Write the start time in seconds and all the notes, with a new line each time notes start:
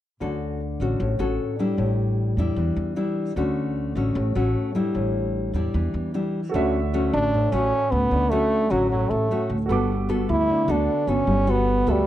0.20 D2 D3 C#4 F#4 A4
0.80 A1 C#4 F#4 A4
1.00 A1 A2
1.19 A1 C#4 F#4 A4
1.59 G3 D4 E4
1.77 A1 A2
2.37 E2 G3 D4 E4
2.56 E2 E3
2.76 E2
2.96 G3 D4 E4
3.36 D2 D3 A3 C#4 F#4
3.95 A1 A3 C#4 F#4
4.15 A1 A2
4.35 A1 A3 C#4 F#4
4.75 G3 D4 E4
4.94 A1 A2
5.53 E2 G3 D4 E4
5.74 E2 E3
5.94 E2
6.14 G3 D4 E4
6.49 F#4 A4
6.54 D2 D3 A3 C#4 F#4 C#5 E5
6.93 A3 C#4 F#4
7.13 A1 D4
7.34 A2
7.52 A1 A3 C#4 F#4
7.91 D2 B3
8.11 D2 D3
8.30 A3 C#4 F#4
8.70 A1 F#3 A3 C#4 F#4
8.91 A2 F#3
9.10 A1 A3
9.31 A3 C#4 F#4
9.50 D2
9.66 G1 G3 F#4 A4 B4
9.70 B3 F#4 A4 D6
10.09 B3 F#4 A4
10.29 D2 E4
10.50 D3
10.68 D2 B3 D4 F#4 A4
11.07 G1 B3 C#4 F#4 A4
11.27 G1 G3
11.47 B3 F#4 A4
11.86 D2 B3 F#4 A4 B4 E5
11.91 G3